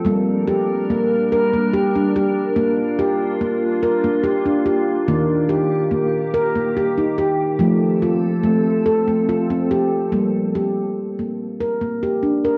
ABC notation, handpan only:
X:1
M:3/4
L:1/16
Q:1/4=72
K:Gm
V:1 name="Handpan"
B,2 G2 B,2 B B, G D G2 | z2 G2 B,2 B B, G D G2 | B,2 G2 B,2 B B, G E G2 | A,2 F2 A,2 A A, F C G2 |
B,2 G2 z B,2 B B, G D B |]
V:2 name="Handpan" clef=bass
G,8 z4 | B,8 z4 | E,8 z4 | F,8 z4 |
G,8 z4 |]